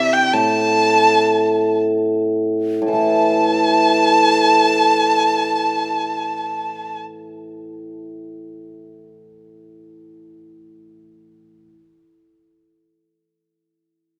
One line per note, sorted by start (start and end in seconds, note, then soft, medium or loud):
0.00 0.34 C3 soft
0.00 0.14 E5 medium
0.00 0.16 E5 medium
0.13 0.35 G5 medium
0.13 0.39 G5 medium
0.33 2.81 A2 soft
0.33 1.79 A5 medium
0.38 1.81 A5 medium
2.82 11.66 A2 soft
2.88 11.72 E3 soft
2.93 10.47 A3 soft
2.93 6.99 A5 medium